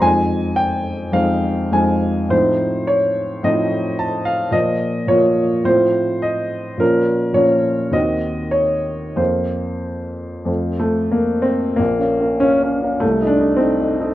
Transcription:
\new Staff \with { instrumentName = "Upright piano" } { \time 4/4 \key f \dorian \tempo 4 = 104 << { aes''4 g''4 f''4 aes''4 | \key bes \minor c''4 des''4 ees''4 a''8 f''8 | ees''4 des''4 c''4 ees''4 | bes'4 des''4 ees''4 des''4 |
c''2~ c''8 a8 bes8 c'8 | bes4 des'4 a8 d'8 c'4 | } \\ { <f, aes c' ees'>2 <f, aes c' ees'>4 <f, aes c' ees'>4 | <a, f c' ees'>2 <a, f c' ees'>2 | <bes, f bes f'>4 <bes, f bes f'>4 <a, f c' f'>2 | <bes, f des' f'>4 <bes, f des' f'>4 <ees, ees c' ges'>2 |
<f, bes c' f'>2 <f, a c' f'>2 | \tuplet 3/2 { bes,,8 <des' bes' f''>8 <des' bes' f''>8 <bes' f''>8 <des' bes' f''>8 <des' bes' f''>8 c,8 <ees' a' ees''>8 <ees' a' ees''>8 <ees' a' ees''>8 <ees' a' ees''>8 <ees' a' ees''>8 } | } >> }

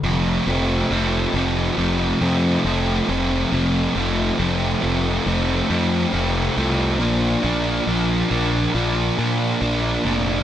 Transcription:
<<
  \new Staff \with { instrumentName = "Distorted electric guitar" } { \clef bass \time 4/4 \key f \major \tempo 4 = 69 <f, c f a c'>8 <f, c f a c'>8 <f, c f a c'>8 <f, c f a c'>8 <f, c f a c'>8 <f, c f a c'>8 <f, c f a c'>8 <f, c f a c'>8 | <f, c f a c'>8 <f, c f a c'>8 <f, c f a c'>8 <f, c f a c'>8 <f, c f a c'>8 <f, c f a c'>8 <f, c f a c'>8 <f, c f a c'>8 | <bes, f bes d'>8 <bes, f bes d'>8 <bes, f bes d'>8 <bes, f bes d'>8 <bes, f bes d'>8 <bes, f bes d'>8 <bes, f bes d'>8 <bes, f bes d'>8 | }
  \new Staff \with { instrumentName = "Fingered electric bass" } { \clef bass \time 4/4 \key f \major f,,8 f,,8 f,,8 f,,8 f,,8 f,8 f,,8 f,,8 | f,,8 f,,8 f,,8 f,,8 f,,8 f,8 f,,8 c,8 | bes,,8 bes,,8 bes,,8 bes,,8 bes,,8 bes,8 bes,,8 f,,8 | }
>>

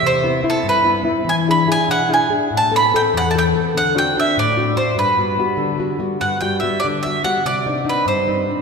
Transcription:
<<
  \new Staff \with { instrumentName = "Mandolin" } { \time 6/8 \key g \major \tempo 4. = 97 c''4 a'8 b'4~ b'32 r16. | gis''8 b''8 gis''8 fis''8 gis''8 r8 | a''8 b''8 g''8 fis''16. a''32 g''8 r8 | fis''8 g''8 e''8 d''4 c''8 |
b'2 r4 | fis''8 g''8 e''8 d''8 e''8 fis''8 | d''4 b'8 c''4~ c''32 r16. | }
  \new Staff \with { instrumentName = "Nylon-string guitar" } { \time 6/8 \key g \major c8 <b c' e'>8 <b c' e'>8 g,8 <b c' e'>8 <b c' e'>8 | e8 <d' e' gis'>8 <d' e' gis'>8 b,8 <d' e' gis'>8 <d' e' gis'>8 | a,8 <b c' a'>8 <b c' a'>8 e,8 <b c' a'>8 <b c' a'>8 | d8 <c' d' fis'>8 <c' d' fis'>8 a,8 <c' d' fis'>8 <c' d' fis'>8 |
g,8 <g b fis'>8 <g b fis'>8 d8 <g b fis'>8 <g b fis'>8 | g,8 <g b fis'>8 <g b fis'>8 d8 <g b fis'>8 <g b fis'>8 | c8 <c' d' ees'>8 <c' d' ees'>8 g,8 <c' d' ees'>8 <c' d' ees'>8 | }
>>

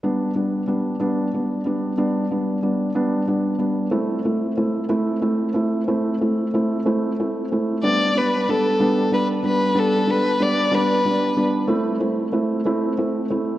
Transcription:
<<
  \new Staff \with { instrumentName = "Violin" } { \time 6/8 \key g \major \tempo 4. = 62 r2. | r2. | r2. | r2. |
d''8 b'8 a'4 b'8 b'8 | a'8 b'8 d''8 b'4 r8 | r2. | }
  \new Staff \with { instrumentName = "Felt piano" } { \time 6/8 \key g \major <g b d'>8 <g b d'>8 <g b d'>8 <g b d'>8 <g b d'>8 <g b d'>8 | <g b d'>8 <g b d'>8 <g b d'>8 <g b d'>8 <g b d'>8 <g b d'>8 | <a c' e'>8 <a c' e'>8 <a c' e'>8 <a c' e'>8 <a c' e'>8 <a c' e'>8 | <a c' e'>8 <a c' e'>8 <a c' e'>8 <a c' e'>8 <a c' e'>8 <a c' e'>8 |
<g b d'>8 <g b d'>8 <g b d'>8 <g b d'>8 <g b d'>8 <g b d'>8 | <g b d'>8 <g b d'>8 <g b d'>8 <g b d'>8 <g b d'>8 <g b d'>8 | <a c' e'>8 <a c' e'>8 <a c' e'>8 <a c' e'>8 <a c' e'>8 <a c' e'>8 | }
>>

